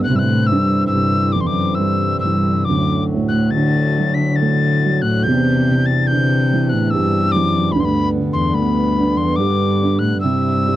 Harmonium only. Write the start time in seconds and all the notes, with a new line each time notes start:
0.08 D3 E3 C4
2.67 D2 A2 F#3
5.27 E2 C3 D4
7.75 G2 D3 B3
10.22 C3 G3 E4